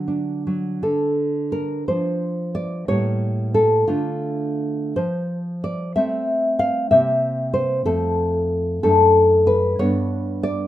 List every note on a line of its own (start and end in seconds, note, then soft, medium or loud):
0.00 0.79 D3 medium
0.00 0.46 F#3 soft
0.00 0.42 F#4 medium
0.08 0.83 D4 soft
0.47 0.83 F#3 soft
0.83 1.84 D3 soft
0.83 1.50 A4 medium
1.52 1.86 A#4 medium
1.88 2.86 F3 soft
1.88 2.86 D4 soft
1.88 2.53 C5 medium
2.55 2.87 D5 medium
2.88 3.86 A2 soft
2.88 3.85 G3 soft
2.88 3.85 A#3 soft
2.88 3.52 C#5 medium
3.54 3.87 A4 medium
3.87 4.93 D3 soft
3.87 4.93 A3 soft
3.87 4.93 D4 soft
3.87 4.92 F4 medium
4.96 5.93 F3 soft
4.96 5.61 C5 medium
5.64 5.95 D5 medium
5.96 6.89 A3 soft
5.96 6.89 C4 soft
5.96 6.58 E5 medium
6.59 6.90 F5 medium
6.91 7.85 C3 soft
6.91 7.83 A#3 soft
6.91 7.83 C4 soft
6.91 7.52 E5 medium
7.53 7.85 C5 medium
7.85 8.80 F2 soft
7.85 8.79 A3 soft
7.85 8.80 C4 soft
7.85 8.79 A4 medium
8.83 9.76 F#2 medium
8.83 9.75 A3 soft
8.83 9.75 D4 soft
8.83 9.44 A4 medium
9.47 9.78 B4 medium
9.79 10.67 G2 soft
9.79 10.67 B3 soft
9.79 10.67 D4 soft
9.79 10.41 C#5 medium
10.43 10.67 D5 medium